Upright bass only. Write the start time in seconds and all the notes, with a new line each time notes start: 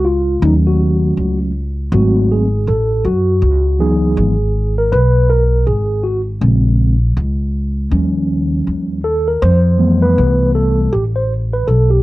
Already playing: C#2
0.42 D#2
1.17 C#2
1.92 G#1
2.67 A1
3.05 F#2
3.42 C#2
4.17 G#1
4.92 B1
5.67 G#1
6.41 A#1
7.17 C#2
7.92 D#2
8.67 D#2
9.42 F2
10.18 C2
10.93 A1
11.67 B1